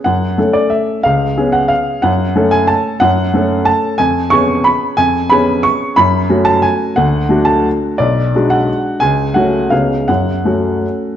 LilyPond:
\new Staff \with { instrumentName = "Upright piano" } { \time 3/4 \key fis \minor \tempo 4 = 180 << { fis''4. d''8 e''4 | eis''4. fis''8 eis''4 | fis''4. gis''8 a''4 | fis''2 a''4 |
gis''4 cis'''4 b''4 | gis''4 b''4 cis'''4 | b''4. a''8 gis''4 | fis''4. a''8 r4 |
d''4. fis''4. | gis''4 fis''4 eis''4 | fis''2. | } \\ { fis,4 <a cis' a'>2 | cis,4 <b cis' gis'>2 | fis,4 <a cis' a'>2 | fis,4 <a cis' a'>2 |
eis,4 <b cis' gis'>2 | eis,4 <b cis' gis'>2 | fis,4 <a cis' fis'>2 | d,4 <a d' fis'>2 |
b,,4 <gis d' fis'>2 | cis,4 <a cis' fis'>4 <cis, b cis' gis'>4 | fis,4 <a cis' fis'>2 | } >> }